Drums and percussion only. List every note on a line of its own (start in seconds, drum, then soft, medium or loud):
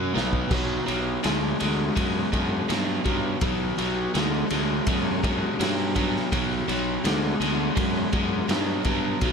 0.17 snare medium
0.33 kick medium
0.51 kick loud
0.51 crash loud
0.88 ride medium
1.24 snare loud
1.24 ride medium
1.60 ride medium
1.97 kick loud
1.97 ride medium
2.33 kick medium
2.33 ride medium
2.70 snare loud
2.70 ride medium
3.05 kick medium
3.05 ride medium
3.41 kick loud
3.41 ride medium
3.78 ride medium
4.15 snare loud
4.15 ride medium
4.50 ride medium
4.87 kick loud
4.87 ride loud
5.24 kick medium
5.24 ride medium
5.61 snare medium
5.61 ride loud
5.96 kick medium
5.96 ride medium
6.16 snare soft
6.32 kick loud
6.32 ride loud
6.69 ride medium
7.05 snare loud
7.05 ride medium
7.42 ride medium
7.77 kick loud
7.77 ride medium
8.13 kick medium
8.13 ride medium
8.49 snare loud
8.49 ride medium
8.85 kick medium
8.85 ride medium
9.21 kick loud
9.21 ride medium